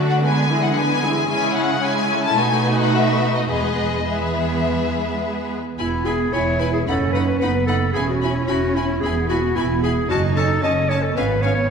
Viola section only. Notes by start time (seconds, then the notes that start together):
Already playing: A3 F#4
0.23 G#3 B3
0.49 E3 G#3
0.76 G#3 B3
1.02 E3 G#3
1.28 G#3 C#4
1.83 G#3 C#4
2.37 A3 D#4
3.50 G#3 B3
4.07 G#3 B3
5.79 E4
6.06 E4
6.34 E4
6.62 E4
6.88 D#4
7.15 D#4
7.42 D#4
7.68 D#4
7.95 E4
8.23 E4
8.49 E4
8.76 E4
9.03 E4
9.30 E4
9.57 E4
9.84 E4
10.09 C#4
10.36 C#4
10.62 C#4
10.90 C#4
11.17 C#4
11.45 C#4